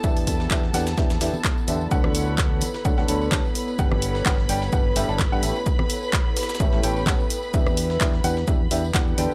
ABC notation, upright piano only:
X:1
M:4/4
L:1/16
Q:"Swing 16ths" 1/4=128
K:D
V:1 name="Upright piano"
[E,DGBe]4 [E,DGBe] z [E,DGBf] z [E,DGBe] z [E,DGBe] z3 [D,DGBe] z | [D,DAcf]6 z2 [D,DAcf] [D,DAcf] [D,DAcb]2 [G,DAca] z3 | [G,DGBf]4 [G,DGBf] z [G,DGBg] z [G,DGBf] z [G,DGBe] [G,DGBa] z [DGBf] [A,,CGAe] z | z8 [A,,CGAe] [A,,CGAe] [A,,CGAg]2 [A,,CGAf] z3 |
[E,DGBe]4 [E,DGBe] z [E,DGBf] z [E,DGBe] z [E,DGBe] z [E,DGBf]2 [D,DGBg] z |]